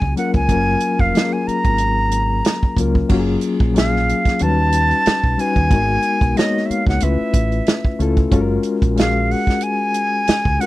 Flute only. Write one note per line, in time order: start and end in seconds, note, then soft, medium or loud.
0.00 0.17 G#5 medium
0.18 0.34 F#5 medium
0.36 1.02 G#5 medium
1.00 1.34 F5 medium
1.33 1.49 G#5 medium
1.47 2.77 A#5 medium
3.77 4.44 F5 medium
4.42 5.42 A5 loud
5.40 6.39 G#5 loud
6.37 6.67 D#5 medium
6.66 6.72 E5 medium
6.71 6.88 F5 medium
6.89 7.05 F#5 medium
7.03 8.00 E5 medium
8.99 9.33 F5 medium
9.32 9.65 F#5 medium
9.63 10.62 G#5 medium
10.61 10.66 F#5 medium